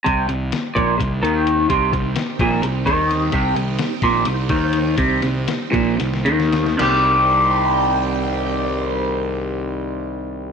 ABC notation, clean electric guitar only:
X:1
M:7/8
L:1/8
Q:1/4=123
K:Cm
V:1 name="Clean electric guitar" clef=bass
C, C, z B,, C, E,2 | C, C, z B,, C, E,2 | C, C, z B,, C, E,2 | C, C, z B,, C, E,2 |
[C,E,G,CG]6- [C,E,G,CG]- | [C,E,G,CG]6- [C,E,G,CG] |]